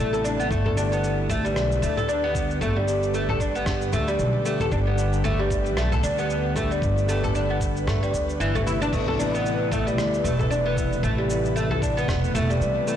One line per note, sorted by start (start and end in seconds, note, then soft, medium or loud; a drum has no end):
0.00 0.47 A1 medium
0.00 0.51 C3 medium
0.00 8.94 G3 medium
0.00 0.10 A3 medium
0.00 0.11 A3 medium
0.00 0.10 B3 medium
0.00 0.11 E4 medium
0.00 1.60 E4 medium
0.00 8.94 G4 medium
0.00 1.53 A4 medium
0.12 0.49 C3 medium
0.12 0.49 E3 medium
0.12 0.49 A3 medium
0.12 0.49 B3 medium
0.12 0.50 E4 medium
0.12 0.23 A4 medium
0.12 shaker soft
0.24 0.38 D4 medium
0.24 shaker medium
0.39 0.50 B3 medium
0.39 shaker soft
0.51 1.56 G1 medium
0.51 8.93 D3 medium
0.51 0.64 A3 medium
0.51 kick loud
0.51 shaker soft
0.66 0.76 A4 medium
0.66 low conga medium
0.75 2.31 D3 medium
0.75 2.32 G3 medium
0.75 2.32 B3 medium
0.75 0.91 D4 medium
0.75 2.32 D4 medium
0.75 2.33 G4 medium
0.75 shaker medium
0.92 1.28 B3 medium
0.92 shaker soft
1.04 shaker soft
1.24 12.96 B4 medium
1.30 1.44 A3 loud
1.30 kick loud
1.30 low conga medium
1.30 shaker medium
1.45 1.81 G3 medium
1.45 shaker soft
1.56 1.78 B1 medium
1.56 10.12 G4 medium
1.56 cross-stick medium
1.56 shaker soft
1.72 shaker soft
1.82 2.58 D2 medium
1.82 1.96 A3 medium
1.82 shaker medium
1.97 2.07 A4 medium
1.97 low conga medium
1.97 shaker soft
2.08 2.22 D4 medium
2.08 shaker soft
2.24 2.60 B3 medium
2.34 2.84 D3 medium
2.34 2.84 G3 medium
2.34 2.85 B3 medium
2.34 2.85 D4 medium
2.34 2.85 G4 medium
2.34 kick loud
2.34 shaker medium
2.51 shaker soft
2.61 3.63 G1 medium
2.61 2.76 A3 medium
2.61 kick loud
2.61 low conga medium
2.61 shaker soft
2.76 3.13 G3 medium
2.86 4.42 D3 medium
2.86 4.42 G3 medium
2.86 4.43 B3 medium
2.86 4.43 D4 medium
2.86 4.44 G4 medium
2.86 shaker medium
3.03 shaker soft
3.14 3.28 A3 medium
3.14 shaker soft
3.29 3.39 A4 medium
3.29 low conga medium
3.40 3.54 D4 medium
3.40 kick medium
3.40 shaker medium
3.55 3.92 B3 medium
3.55 shaker soft
3.66 3.88 G2 medium
3.66 kick medium
3.66 cross-stick medium
3.66 shaker soft
3.82 shaker soft
3.93 4.15 D2 medium
3.93 4.07 A3 medium
3.93 low conga medium
3.93 shaker medium
4.08 4.44 G3 medium
4.08 shaker soft
4.19 4.31 B1 medium
4.19 shaker soft
4.44 4.95 D3 medium
4.44 4.95 G3 medium
4.44 4.59 A3 medium
4.44 4.95 B3 medium
4.44 4.95 D4 medium
4.44 4.96 G4 medium
4.44 shaker medium
4.60 4.71 A4 medium
4.60 low conga medium
4.60 shaker soft
4.72 5.77 G1 loud
4.72 4.85 D4 medium
4.72 kick loud
4.72 shaker soft
4.87 5.23 B3 medium
4.96 6.52 D3 medium
4.96 6.53 G3 medium
4.96 6.53 B3 medium
4.96 6.54 D4 medium
4.96 6.54 G4 medium
4.96 shaker medium
5.13 shaker soft
5.24 5.39 A3 medium
5.24 low conga medium
5.24 shaker soft
5.39 5.76 G3 medium
5.50 kick loud
5.50 shaker medium
5.66 shaker soft
5.77 5.99 B1 medium
5.77 5.90 A3 medium
5.77 cross-stick medium
5.77 shaker soft
5.92 6.02 A4 medium
5.92 low conga medium
5.92 shaker soft
6.03 6.79 D2 medium
6.03 6.17 D4 medium
6.03 shaker medium
6.18 6.55 B3 medium
6.18 shaker soft
6.30 shaker soft
6.55 7.05 D3 medium
6.55 7.06 G3 medium
6.55 6.70 A3 medium
6.55 7.06 B3 medium
6.55 7.06 D4 medium
6.55 7.06 G4 medium
6.55 kick medium
6.55 low conga medium
6.55 shaker medium
6.71 7.07 G3 medium
6.71 shaker soft
6.82 7.84 G1 medium
6.82 kick loud
6.82 shaker soft
6.98 shaker soft
7.07 8.63 D3 medium
7.07 8.63 G3 medium
7.07 7.22 A3 medium
7.07 8.64 B3 medium
7.07 8.64 D4 medium
7.07 shaker medium
7.11 8.65 G4 medium
7.24 7.34 A4 medium
7.24 low conga medium
7.24 shaker soft
7.35 7.49 D4 medium
7.35 shaker soft
7.50 7.86 B3 medium
7.61 kick medium
7.61 shaker medium
7.77 shaker soft
7.87 8.09 G2 medium
7.87 8.02 A3 medium
7.87 kick medium
7.87 cross-stick medium
7.87 low conga medium
7.87 shaker soft
8.03 8.13 G3 medium
8.03 shaker soft
8.14 8.36 D2 medium
8.14 kick medium
8.14 shaker medium
8.29 shaker soft
8.40 8.89 G1 medium
8.40 8.54 E3 loud
8.40 shaker soft
8.55 8.62 A3 medium
8.55 low conga medium
8.55 shaker soft
8.66 9.16 C3 medium
8.66 9.16 E3 medium
8.66 9.16 A3 medium
8.66 9.17 B3 medium
8.66 8.80 E4 medium
8.66 9.17 E4 medium
8.66 shaker medium
8.82 8.92 D4 loud
8.82 shaker soft
8.93 9.98 A1 medium
8.93 12.96 C3 medium
8.93 9.06 A3 medium
8.93 12.96 B3 medium
8.93 12.96 B4 medium
8.93 kick loud
8.93 crash medium
8.93 shaker soft
9.08 9.18 A4 medium
9.08 low conga medium
9.17 10.73 C3 medium
9.17 10.74 E3 medium
9.17 10.74 A3 medium
9.17 10.75 B3 medium
9.17 9.33 D4 medium
9.17 12.96 E4 medium
9.17 shaker medium
9.21 10.75 E4 medium
9.34 9.71 B3 medium
9.34 shaker soft
9.46 shaker soft
9.54 12.96 A3 medium
9.72 9.86 A3 loud
9.72 kick loud
9.72 low conga medium
9.72 shaker medium
9.87 10.23 G3 medium
9.87 shaker soft
9.98 10.20 D2 medium
9.98 cross-stick medium
9.98 shaker soft
10.14 shaker soft
10.24 11.00 E1 medium
10.24 10.38 A3 medium
10.24 shaker medium
10.39 10.49 A4 medium
10.39 low conga medium
10.39 shaker soft
10.50 10.64 D4 medium
10.50 shaker soft
10.66 11.02 B3 medium
10.76 11.26 C3 medium
10.76 11.27 E3 medium
10.76 11.27 A3 medium
10.76 11.27 B3 medium
10.76 11.27 E4 medium
10.76 kick loud
10.76 shaker medium
10.93 shaker soft
11.03 12.05 A1 medium
11.03 11.18 A3 loud
11.03 kick loud
11.03 low conga medium
11.03 shaker soft
11.18 11.55 G3 medium
11.27 12.84 C3 medium
11.27 12.84 E3 medium
11.27 12.85 A3 medium
11.27 12.85 B3 medium
11.27 shaker medium
11.31 12.86 E4 medium
11.45 shaker soft
11.56 11.69 A3 medium
11.56 shaker soft
11.71 11.81 A4 medium
11.71 low conga medium
11.82 11.96 D4 medium
11.82 kick loud
11.82 shaker medium
11.97 12.34 B3 medium
11.97 shaker soft
12.08 12.30 E1 medium
12.08 kick loud
12.08 cross-stick medium
12.08 shaker soft
12.24 shaker soft
12.34 12.56 E1 medium
12.34 12.49 A3 medium
12.34 low conga medium
12.34 shaker medium
12.50 12.86 G3 medium
12.50 shaker soft
12.61 12.73 C2 medium
12.61 shaker soft
12.85 12.96 C3 medium
12.85 12.96 E3 medium
12.85 12.96 A3 medium
12.85 12.96 B3 medium
12.85 12.96 D4 medium
12.85 12.96 E4 medium
12.85 shaker medium